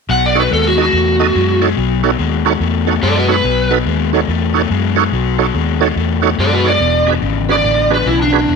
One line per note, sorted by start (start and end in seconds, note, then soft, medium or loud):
0.09 0.47 B1 medium
0.09 0.33 B2 medium
0.09 0.33 F#3 medium
0.09 0.24 F#5 loud
0.26 0.38 D5 medium
0.35 0.49 B2 medium
0.35 0.50 F#3 medium
0.35 0.43 D#4 medium
0.35 0.43 F#4 medium
0.35 0.43 A4 medium
0.35 0.43 C#5 medium
0.40 0.52 B4 medium
0.51 0.89 D#2 medium
0.51 0.75 B2 medium
0.51 0.75 G#3 medium
0.51 0.66 A4 medium
0.67 0.80 F#4 medium
0.77 0.91 B2 medium
0.77 0.91 G#3 medium
0.77 0.85 D#4 medium
0.77 0.85 F#4 medium
0.77 0.85 A4 medium
0.77 0.85 D#5 medium
0.82 1.62 F#4 medium
0.92 1.31 E2 medium
0.92 1.17 B2 medium
0.92 1.17 A3 medium
1.19 1.33 B2 medium
1.19 1.33 A3 medium
1.19 1.27 D#4 medium
1.19 1.27 F#4 medium
1.19 1.28 A4 medium
1.19 1.27 D#5 medium
1.35 1.73 F#2 medium
1.35 1.59 B2 medium
1.35 1.59 G#3 medium
1.61 1.75 B2 medium
1.61 1.76 G#3 medium
1.61 1.69 D#4 medium
1.61 1.69 F#4 medium
1.61 1.69 A4 medium
1.61 1.69 C#5 medium
1.77 2.15 B1 medium
1.77 2.01 B2 medium
1.77 2.01 F#3 medium
2.03 2.17 B2 medium
2.03 2.17 F#3 medium
2.03 2.11 D#4 medium
2.03 2.11 F#4 medium
2.03 2.11 A4 medium
2.03 2.11 C#5 medium
2.18 2.57 D#2 medium
2.18 2.42 B2 medium
2.18 2.43 G#3 medium
2.45 2.59 B2 medium
2.45 2.59 G#3 medium
2.45 2.53 D#4 medium
2.45 2.53 F#4 medium
2.45 2.53 A4 medium
2.45 2.53 C#5 medium
2.60 2.98 E2 medium
2.60 2.85 B2 medium
2.60 2.85 A3 medium
2.86 3.00 B2 medium
2.86 3.01 A3 medium
2.86 2.95 D#4 medium
2.86 2.95 F#4 medium
2.86 2.95 A4 medium
2.86 2.95 C#5 medium
3.02 3.40 F#2 medium
3.02 3.26 B2 medium
3.02 3.27 G#3 medium
3.02 3.17 A4 medium
3.02 3.16 D5 medium
3.17 3.31 F#4 medium
3.17 3.30 B4 medium
3.28 3.43 B2 medium
3.28 3.43 G#3 medium
3.28 3.36 D#4 medium
3.28 3.36 F#4 medium
3.28 3.36 A4 medium
3.28 3.71 B4 medium
3.28 3.36 C#5 medium
3.44 3.82 B1 medium
3.44 3.68 B2 medium
3.44 3.68 F#3 medium
3.71 3.85 B2 medium
3.71 3.85 F#3 medium
3.71 3.78 D#4 medium
3.71 3.78 F#4 medium
3.71 3.78 A4 medium
3.71 3.78 B4 medium
3.86 4.24 D#2 medium
3.86 4.10 B2 medium
3.86 4.10 G#3 medium
4.13 4.27 B2 medium
4.13 4.27 G#3 medium
4.13 4.20 D#4 medium
4.13 4.21 F#4 medium
4.13 4.21 A4 medium
4.13 4.21 C#5 medium
4.28 4.66 E2 medium
4.28 4.52 B2 medium
4.28 4.53 A3 medium
4.54 4.69 B2 medium
4.54 4.69 A3 medium
4.54 4.62 D#4 medium
4.54 4.62 F#4 medium
4.54 4.62 A4 medium
4.54 4.62 C#5 medium
4.70 5.08 F#2 medium
4.70 4.95 B2 medium
4.70 4.95 G#3 medium
4.96 5.11 B2 medium
4.96 5.11 G#3 medium
4.96 5.04 D#4 medium
4.96 5.04 F#4 medium
4.96 5.04 A4 medium
4.96 5.04 C#5 medium
5.12 5.50 B1 medium
5.12 5.37 B2 medium
5.12 5.37 F#3 medium
5.38 5.53 B2 medium
5.38 5.53 F#3 medium
5.38 5.46 D#4 medium
5.38 5.46 F#4 medium
5.38 5.46 A4 medium
5.38 5.46 C#5 loud
5.54 5.92 D#2 medium
5.54 5.78 B2 medium
5.54 5.79 G#3 medium
5.80 5.95 B2 medium
5.80 5.95 G#3 medium
5.80 5.88 D#4 medium
5.80 5.88 F#4 medium
5.80 5.88 A4 medium
5.80 5.88 C#5 medium
5.96 6.34 E2 medium
5.96 6.20 B2 medium
5.96 6.21 A3 medium
6.22 6.37 B2 medium
6.22 6.37 A3 medium
6.22 6.30 D#4 medium
6.22 6.30 F#4 medium
6.22 6.30 A4 medium
6.22 6.30 C#5 medium
6.38 6.76 F#2 medium
6.38 6.62 B2 medium
6.38 6.63 G#3 medium
6.38 6.53 A4 medium
6.38 6.53 D5 medium
6.53 6.67 F#4 medium
6.53 6.67 B4 medium
6.64 6.79 B2 medium
6.64 6.79 G#3 medium
6.64 6.72 D#4 medium
6.64 6.72 F#4 medium
6.64 6.72 A4 medium
6.64 6.72 C#5 medium
6.64 7.08 D5 medium
6.80 7.18 E1 medium
6.80 7.04 E2 medium
6.80 7.04 B2 medium
7.06 7.20 E2 medium
7.06 7.21 B2 medium
7.06 7.15 D4 medium
7.06 7.14 F#4 medium
7.06 7.14 G#4 medium
7.06 7.14 B4 medium
7.22 7.60 G#1 medium
7.22 7.46 E2 medium
7.22 7.46 C#3 medium
7.49 7.62 E2 medium
7.49 7.63 C#3 medium
7.49 7.57 D4 medium
7.49 7.56 F#4 medium
7.49 7.57 G#4 medium
7.49 7.56 B4 medium
7.49 7.92 D5 medium
7.64 8.02 A1 medium
7.64 7.88 E2 medium
7.64 7.88 D3 medium
7.90 8.04 E2 medium
7.90 8.05 D3 medium
7.90 7.98 D4 medium
7.90 7.98 F#4 medium
7.90 7.98 G#4 medium
7.90 7.98 B4 medium
7.90 8.07 B4 medium
8.06 8.44 B1 medium
8.06 8.30 E2 medium
8.06 8.30 C#3 medium
8.06 8.20 E4 medium
8.22 8.56 D4 medium
8.32 8.46 E2 medium
8.32 8.47 C#3 medium
8.32 8.40 D4 medium
8.32 8.40 F#4 medium
8.32 8.40 G#4 medium
8.32 8.40 B4 medium
8.48 8.56 E1 medium
8.48 8.56 E2 medium
8.48 8.56 B2 medium